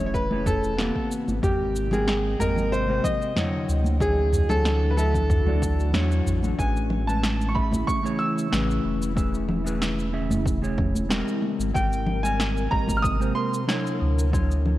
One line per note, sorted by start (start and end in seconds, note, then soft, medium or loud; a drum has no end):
0.00 0.91 E1 loud
0.00 1.06 C#3 medium
0.00 1.07 E3 medium
0.00 0.26 A3 medium
0.00 0.26 C#4 medium
0.00 1.06 E4 medium
0.00 0.26 G#4 medium
0.00 0.27 E5 medium
0.06 0.13 C#5 medium
0.14 0.47 B4 medium
0.14 kick medium
0.14 cabasa soft
0.30 0.74 A3 medium
0.30 0.75 C#4 medium
0.30 0.75 G#4 medium
0.30 0.75 C#5 medium
0.30 high conga medium
0.46 1.07 A4 medium
0.46 kick medium
0.46 mid tom medium
0.46 cabasa medium
0.63 cabasa soft
0.77 1.40 A#3 loud
0.77 1.39 B3 medium
0.77 1.39 C4 medium
0.77 1.39 G4 medium
0.77 snare medium
0.77 high conga medium
0.77 cabasa soft
0.95 kick medium
1.11 3.66 C3 medium
1.11 3.66 A#3 medium
1.11 3.66 D#5 medium
1.11 3.66 G5 medium
1.11 cabasa medium
1.28 1.40 G#1 medium
1.28 high conga medium
1.28 cabasa soft
1.42 2.36 G#1 medium
1.42 1.88 G#3 medium
1.42 1.88 C4 medium
1.42 1.94 G4 medium
1.42 1.88 G4 medium
1.42 1.89 A#4 medium
1.42 kick loud
1.42 mid tom medium
1.42 cabasa soft
1.76 cabasa medium
1.91 2.36 G#3 medium
1.91 2.36 C4 medium
1.91 2.37 G#4 medium
1.91 2.37 A#4 medium
1.91 2.36 G5 medium
1.91 high conga medium
1.91 low conga medium
1.91 cabasa soft
2.08 snare medium
2.08 cabasa soft
2.39 3.00 G#1 medium
2.39 2.84 G#3 medium
2.39 2.85 C4 medium
2.39 2.85 G4 medium
2.39 2.73 A#4 medium
2.39 2.85 D#5 medium
2.39 mid tom medium
2.39 high conga medium
2.39 cabasa medium
2.56 low conga medium
2.56 cabasa soft
2.72 3.02 C5 medium
2.72 cabasa soft
2.88 3.33 G#3 medium
2.88 3.33 C4 medium
2.88 3.33 G4 medium
2.88 3.33 C5 medium
2.88 high conga medium
3.04 3.65 D#5 loud
3.04 kick medium
3.04 low conga medium
3.04 cabasa medium
3.22 cabasa soft
3.36 3.97 D3 medium
3.36 3.97 F#3 loud
3.36 3.98 E4 medium
3.36 3.98 C#5 loud
3.36 snare medium
3.36 mid tom medium
3.36 high conga medium
3.36 cabasa soft
3.68 4.46 D2 loud
3.68 6.56 E3 medium
3.68 6.56 A3 medium
3.68 6.56 D4 medium
3.68 6.56 F#4 medium
3.68 cabasa medium
3.85 high conga medium
3.85 cabasa soft
4.00 4.46 F#3 medium
4.00 4.46 D4 medium
4.00 4.46 E4 medium
4.00 4.47 G#4 loud
4.00 4.47 C#5 medium
4.00 kick loud
4.00 cabasa soft
4.33 mid tom medium
4.33 cabasa medium
4.49 5.94 D2 loud
4.49 4.93 F#3 medium
4.49 4.94 D4 medium
4.49 4.94 E4 medium
4.49 4.92 A4 loud
4.49 4.94 C#5 medium
4.49 high conga medium
4.49 low conga medium
4.49 cabasa soft
4.65 snare medium
4.65 cabasa soft
4.90 4.97 B4 medium
4.97 5.42 F#3 medium
4.97 5.43 D4 medium
4.97 5.43 E4 medium
4.97 5.90 A4 loud
4.97 5.43 E5 medium
4.97 cabasa medium
5.14 kick medium
5.14 low conga medium
5.14 cabasa soft
5.30 kick medium
5.30 mid tom medium
5.30 cabasa soft
5.46 5.90 F#3 medium
5.46 5.91 D4 medium
5.46 5.91 E4 medium
5.46 5.91 D5 medium
5.46 high conga medium
5.62 kick loud
5.62 cabasa medium
5.80 cabasa soft
5.93 6.22 E2 medium
5.93 6.55 F#3 medium
5.93 6.55 D4 medium
5.93 6.55 E4 medium
5.93 6.56 C#5 loud
5.93 snare loud
5.93 high conga medium
5.93 cabasa soft
6.12 cabasa soft
6.26 6.54 A1 medium
6.26 mid tom medium
6.26 cabasa medium
6.43 high conga medium
6.43 cabasa soft
6.58 7.84 A1 loud
6.58 11.39 C#3 medium
6.58 11.39 E3 medium
6.58 7.04 A3 medium
6.58 7.04 C#4 medium
6.58 11.39 E4 medium
6.58 7.04 G#4 medium
6.58 7.05 B4 medium
6.58 7.10 G#5 medium
6.58 kick loud
6.58 cabasa medium
6.77 cabasa soft
6.90 low conga medium
7.07 7.52 G#3 medium
7.07 7.51 A3 medium
7.07 7.52 C#4 medium
7.07 7.53 B4 medium
7.07 7.46 A5 medium
7.07 cabasa medium
7.23 snare loud
7.23 cabasa medium
7.41 cabasa soft
7.49 7.55 C#6 medium
7.54 8.00 A3 medium
7.54 8.01 C#4 medium
7.54 8.01 G#4 medium
7.54 8.01 E5 medium
7.54 7.88 B5 medium
7.54 kick loud
7.72 kick medium
7.72 high conga medium
7.72 cabasa medium
7.87 8.21 C#6 medium
7.87 kick loud
7.87 cabasa medium
8.03 8.48 A3 medium
8.03 8.48 C#4 medium
8.03 8.49 G#4 medium
8.03 8.49 C#5 medium
8.03 cabasa soft
8.19 8.80 E6 loud
8.38 cabasa medium
8.51 8.79 A1 medium
8.51 9.12 A3 medium
8.51 9.13 C#4 medium
8.51 9.13 G#4 medium
8.51 9.13 B4 loud
8.51 snare loud
8.51 cabasa medium
8.71 cabasa soft
8.85 11.23 E1 loud
9.02 cabasa medium
9.15 9.61 A3 medium
9.15 9.62 C#4 medium
9.15 9.62 G#4 medium
9.15 9.62 B4 medium
9.15 kick loud
9.15 cabasa medium
9.34 cabasa soft
9.49 low conga medium
9.64 10.09 A3 medium
9.64 10.10 C#4 medium
9.64 10.10 G#4 medium
9.64 10.10 B4 medium
9.64 cabasa medium
9.82 snare loud
9.82 cabasa medium
9.99 cabasa soft
10.12 10.58 A3 medium
10.12 10.59 C#4 medium
10.12 10.59 G#4 medium
10.12 10.59 E5 medium
10.31 mid tom medium
10.31 high conga medium
10.31 cabasa medium
10.46 kick loud
10.46 cabasa medium
10.62 11.06 A3 medium
10.62 11.07 C#4 medium
10.62 11.07 G#4 medium
10.62 11.07 C#5 medium
10.62 cabasa soft
10.78 kick loud
10.78 mid tom medium
10.78 low conga medium
10.95 high conga medium
10.95 cabasa medium
11.09 11.71 G#3 loud
11.09 11.71 C4 medium
11.09 11.71 G4 medium
11.09 11.72 A#4 loud
11.09 snare loud
11.09 cabasa medium
11.28 cabasa soft
11.42 13.98 C3 medium
11.42 13.98 A#3 medium
11.42 13.98 A#4 medium
11.42 high conga medium
11.59 11.72 G#1 medium
11.59 cabasa medium
11.73 12.68 G#1 medium
11.73 12.19 G#3 medium
11.73 12.20 C4 medium
11.73 12.20 G4 medium
11.73 12.20 A#4 medium
11.73 12.20 G5 medium
11.73 kick loud
11.73 cabasa medium
11.93 cabasa soft
12.06 low conga medium
12.23 12.68 G3 medium
12.23 12.68 G#3 medium
12.23 12.68 C4 medium
12.23 12.69 A#4 medium
12.23 12.73 G#5 medium
12.23 cabasa medium
12.40 snare loud
12.40 cabasa medium
12.57 cabasa soft
12.70 13.32 G#1 medium
12.70 13.16 G#3 medium
12.70 13.16 C4 medium
12.70 13.17 G4 medium
12.70 13.17 D#5 medium
12.70 12.95 A#5 medium
12.70 kick loud
12.88 kick medium
12.88 high conga medium
12.88 cabasa medium
12.97 13.04 F6 medium
13.02 13.37 D#6 loud
13.02 kick loud
13.02 cabasa medium
13.19 13.64 G#3 medium
13.19 13.64 C4 medium
13.19 13.65 G4 medium
13.19 13.65 C5 medium
13.19 cabasa soft
13.35 13.96 C6 loud
13.54 cabasa medium
13.67 14.29 F#3 medium
13.67 14.29 D4 medium
13.67 14.29 E4 medium
13.67 14.29 C#5 loud
13.67 snare medium
13.67 cabasa medium
13.87 cabasa soft
14.01 14.78 D2 loud
14.01 14.78 D3 medium
14.01 14.78 F#3 medium
14.01 14.78 A3 medium
14.01 14.78 E4 medium
14.19 cabasa medium
14.31 14.77 F#3 medium
14.31 14.78 D4 medium
14.31 14.78 E4 medium
14.31 14.78 C#5 medium
14.31 kick loud
14.31 cabasa medium
14.51 cabasa soft
14.65 low conga medium